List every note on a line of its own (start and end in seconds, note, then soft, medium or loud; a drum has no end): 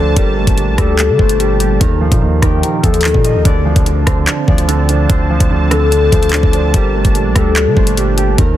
0.00 0.15 D2 loud
0.00 0.19 D3 medium
0.00 0.13 F3 medium
0.00 0.18 F3 medium
0.00 0.13 C4 medium
0.00 0.13 D4 medium
0.00 0.18 D4 medium
0.00 0.22 A4 medium
0.00 1.19 C5 medium
0.00 1.60 D5 medium
0.00 1.77 A5 medium
0.16 0.46 G1 loud
0.16 3.42 A#2 medium
0.16 1.79 G3 medium
0.16 0.56 G3 medium
0.16 1.79 D4 medium
0.16 0.84 A#4 loud
0.16 kick loud
0.16 closed hi-hat loud
0.37 1.18 A3 medium
0.47 0.69 G1 loud
0.47 kick loud
0.47 closed hi-hat medium
0.57 0.77 G3 medium
0.57 closed hi-hat medium
0.68 0.78 A#1 loud
0.78 1.10 D2 loud
0.78 0.97 G3 medium
0.78 1.87 A4 medium
0.78 kick loud
0.78 cross-stick loud
0.78 closed hi-hat medium
0.99 1.38 G3 medium
0.99 clap loud
0.99 closed hi-hat medium
1.09 1.19 D3 loud
1.19 1.78 G1 loud
1.19 1.81 A3 medium
1.19 3.17 C5 medium
1.19 kick loud
1.29 closed hi-hat medium
1.40 1.81 G3 medium
1.40 closed hi-hat medium
1.60 1.80 G4 medium
1.60 closed hi-hat medium
1.80 2.10 D#2 loud
1.80 2.20 D#3 medium
1.80 3.44 F3 medium
1.80 3.44 D#4 medium
1.80 2.90 A#4 loud
1.80 3.44 A#4 medium
1.80 kick loud
1.80 closed hi-hat loud
2.01 2.82 F3 medium
2.12 2.21 A#2 loud
2.12 kick loud
2.12 closed hi-hat medium
2.22 2.42 D#2 loud
2.22 2.42 D#3 medium
2.42 2.62 D#2 loud
2.42 2.62 D#3 medium
2.42 4.78 G4 loud
2.42 kick loud
2.42 cross-stick loud
2.42 closed hi-hat medium
2.63 3.03 D#3 medium
2.63 closed hi-hat medium
2.84 3.13 D#2 loud
2.84 3.45 F3 medium
2.84 3.10 A4 medium
2.84 kick loud
2.84 closed hi-hat medium
2.94 closed hi-hat medium
3.01 3.45 D#3 loud
3.01 5.16 A#4 medium
3.01 clap loud
3.01 closed hi-hat medium
3.08 closed hi-hat medium
3.14 3.36 A#2 loud
3.14 kick loud
3.25 3.45 D#5 medium
3.25 closed hi-hat medium
3.35 3.45 D2 loud
3.45 3.75 D2 loud
3.45 3.85 D3 medium
3.45 6.71 F3 medium
3.45 6.71 C4 medium
3.45 6.71 D4 medium
3.45 4.48 D5 loud
3.45 8.34 A5 medium
3.45 kick loud
3.45 closed hi-hat loud
3.65 4.47 F3 medium
3.76 4.06 D2 loud
3.76 kick loud
3.76 closed hi-hat medium
3.86 4.05 D3 medium
3.86 closed hi-hat medium
4.06 4.27 D2 loud
4.06 4.26 D3 medium
4.06 5.09 C5 medium
4.06 kick loud
4.06 cross-stick loud
4.06 closed hi-hat medium
4.27 4.67 D3 medium
4.27 clap loud
4.27 closed hi-hat medium
4.48 5.07 D2 loud
4.48 5.28 F3 medium
4.48 6.32 D5 medium
4.48 kick loud
4.58 closed hi-hat medium
4.68 5.08 D3 medium
4.68 closed hi-hat medium
4.89 5.92 D4 medium
4.89 closed hi-hat medium
5.09 5.39 D2 loud
5.09 5.49 D3 medium
5.09 6.12 C5 loud
5.09 kick loud
5.09 closed hi-hat loud
5.30 6.11 F3 medium
5.40 5.50 D2 loud
5.40 kick loud
5.40 closed hi-hat medium
5.50 6.10 D2 loud
5.50 5.69 D3 medium
5.71 5.90 D3 loud
5.71 6.80 A4 medium
5.71 cross-stick loud
5.71 closed hi-hat medium
5.92 6.32 D3 medium
5.92 closed hi-hat medium
6.12 6.42 D2 loud
6.12 6.74 F3 medium
6.12 6.53 C5 medium
6.12 kick loud
6.12 closed hi-hat medium
6.23 closed hi-hat medium
6.29 6.74 D3 medium
6.29 8.18 D5 medium
6.29 clap loud
6.29 closed hi-hat medium
6.36 closed hi-hat soft
6.43 6.73 D2 loud
6.43 kick loud
6.53 6.74 D4 medium
6.53 7.76 C5 medium
6.53 closed hi-hat medium
6.74 7.04 G1 loud
6.74 8.57 A#2 medium
6.74 8.37 G3 medium
6.74 7.13 G3 medium
6.74 8.37 D4 medium
6.74 7.42 A#4 loud
6.74 kick loud
6.74 closed hi-hat loud
6.95 7.75 A3 medium
7.05 7.27 G1 loud
7.05 kick loud
7.05 closed hi-hat medium
7.15 7.34 G3 medium
7.15 closed hi-hat medium
7.25 7.35 A#1 loud
7.36 7.68 D2 loud
7.36 7.55 G3 medium
7.36 8.44 A4 medium
7.36 kick loud
7.36 cross-stick loud
7.36 closed hi-hat medium
7.56 7.96 G3 medium
7.56 clap loud
7.56 closed hi-hat medium
7.66 7.76 D3 loud
7.77 8.36 G1 loud
7.77 8.38 A3 medium
7.77 8.57 C5 medium
7.77 kick loud
7.87 closed hi-hat medium
7.97 8.38 G3 medium
7.97 closed hi-hat medium
8.17 8.38 G4 medium
8.17 closed hi-hat medium
8.38 8.57 D#2 loud
8.38 8.57 D#3 medium
8.38 8.57 F3 medium
8.38 8.57 D#4 medium
8.38 8.57 A#4 medium
8.38 8.57 A#4 loud
8.38 kick loud
8.38 closed hi-hat medium